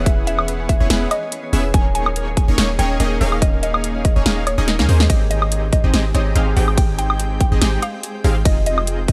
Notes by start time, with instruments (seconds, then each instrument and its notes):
Already playing: 808-style bass E1, ambient pad E3 B3 C#4 G#4, supersaw synth B3 C#4 E4 G#4 F#5, harp B4 C#5
0.06 harp G#4, synth pluck E5, kick, closed hi-hat
0.18 harp B4
0.27 harp C#5, synth pluck E5, closed hi-hat
0.39 harp C#5, high woodblock
0.48 harp B4, closed hi-hat
0.60 harp C#5
0.69 harp G#4, synth pluck E5, kick, closed hi-hat
0.80 808-style bass E1, supersaw synth B3 C#4 E4 G#4 C#5, harp B4
0.90 808-style bass E1, supersaw synth B3 C#4 E4 G#4 F#5, harp G#4, snare, closed hi-hat
1.02 harp B4
1.11 harp C#5, synth pluck D#5, closed hi-hat, high woodblock
1.23 harp C#5
1.32 harp B4, closed hi-hat
1.44 harp C#5
1.53 808-style bass E1, supersaw synth B3 C#4 E4 G#4 E5, harp G#4, open hi-hat
1.65 harp B4
1.74 808-style bass D#1, ambient pad D#3 A#3 C#4, supersaw synth C#4 D#4 G#4 C#5, harp G#4, synth pluck G#5, kick, closed hi-hat
1.85 harp A#4
1.95 harp C#5, synth pluck G#5, closed hi-hat
2.06 harp C#5, high woodblock
2.16 harp A#4, closed hi-hat
2.27 harp C#5
2.37 harp G#4, synth pluck G#5, kick, closed hi-hat
2.48 808-style bass D#1, supersaw synth A#3 C#4 D#4 G#4 C#5, harp A#4
2.58 808-style bass D#1, supersaw synth A#3 C#4 D#4 G#4 C#5, harp G#4, snare, closed hi-hat
2.69 harp A#4
2.79 808-style bass D#1, supersaw synth A#3 C#4 D#4 G#4 C#5, harp C#5, synth pluck G5, closed hi-hat
2.90 harp C#5
3.00 808-style bass D#1, supersaw synth A#3 C#4 D#4 G#4 D#5, harp A#4, closed hi-hat
3.11 harp C#5
3.21 808-style bass D#1, supersaw synth A#3 C#4 D#4 G#4 F5, harp G#4, open hi-hat
3.32 harp A#4, high woodblock
3.42 harp G#4, synth pluck D#5, kick, closed hi-hat
3.53 harp A#4
3.63 harp C#5, synth pluck D#5, closed hi-hat
3.74 harp C#5, high woodblock
3.84 harp A#4, closed hi-hat
3.95 harp C#5
4.05 harp G#4, synth pluck D#5, kick, closed hi-hat
4.16 808-style bass D#1, supersaw synth A#3 C#4 D#4 G#4 C#5, harp A#4
4.26 808-style bass D#1, supersaw synth A#3 C#4 D#4 G#4 F5, harp G#4, snare, closed hi-hat
4.37 harp A#4
4.47 harp G#4, synth pluck C#5, closed hi-hat, high woodblock
4.58 808-style bass D#1, supersaw synth A#3 C#4 D#4 G#4 D#5, harp A#4
4.68 harp C#5, snare, closed hi-hat
4.79 808-style bass D#2, supersaw synth A#3 C#4 D#4 G#4 F5, harp A#5, snare
4.89 808-style bass D#2, supersaw synth A#3 C#4 D#4 G#4 C5, harp G#4, open hi-hat
5.00 harp D#5, snare
5.10 808-style bass G#1, ambient pad G#3 C4 G5, supersaw synth C4 D#4 G4 G#4, harp G4, synth pluck D#5, kick, closed hi-hat, ride
5.21 harp G#4
5.31 harp C5, synth pluck D#5, closed hi-hat
5.42 harp C5, high woodblock
5.52 harp G#4, closed hi-hat
5.63 harp C5
5.73 harp G4, synth pluck D#5, kick, closed hi-hat
5.84 808-style bass G#1, supersaw synth C4 D#4 G4 G#4 D#5, harp G#4
5.93 808-style bass G#1, supersaw synth C4 D#4 G4 G#4 D#5, harp G4, snare, closed hi-hat, ride
6.05 harp G#4
6.14 808-style bass G#1, supersaw synth C4 D#4 G4 G#4 D#5, harp C5, synth pluck C#5, closed hi-hat
6.26 harp C5
6.35 808-style bass G#1, supersaw synth C4 D#4 G4 G#4 F5, harp G#4, closed hi-hat
6.47 harp C5
6.57 808-style bass G#1, supersaw synth C4 D#4 G4 G#4 G5, harp G4, open hi-hat
6.68 harp G#4, high woodblock
6.77 harp G4, synth pluck G5, kick, closed hi-hat, ride
6.89 harp G#4
6.99 harp C5, synth pluck G5, closed hi-hat
7.10 harp C5, high woodblock
7.20 harp G#4, closed hi-hat
7.31 harp C5
7.40 harp G4, synth pluck G5, kick, closed hi-hat
7.52 808-style bass G#1, supersaw synth C4 D#4 G4 G#4 D#5, harp G#4
7.61 808-style bass G#1, supersaw synth C4 D#4 G4 G#4 G5, harp G4, snare, closed hi-hat, ride
7.73 harp G#4
7.82 harp C5, synth pluck F5, closed hi-hat, high woodblock
7.94 harp C5
8.03 harp G#4, closed hi-hat
8.15 harp C5
8.24 808-style bass G#1, supersaw synth C4 D#4 G4 G#4 F5, harp G4, open hi-hat
8.36 harp G#4
8.45 808-style bass F1, ambient pad F3 D#4 G#4, supersaw synth C4 D#4 F4 G#4 D#5, harp F4, synth pluck D#5, kick, closed hi-hat, ride
8.57 harp G#4
8.66 harp C5, synth pluck D#5, closed hi-hat
8.78 harp C5, high woodblock
8.87 harp G#4, closed hi-hat
8.99 harp C5
9.08 harp F4, synth pluck D#5, kick, closed hi-hat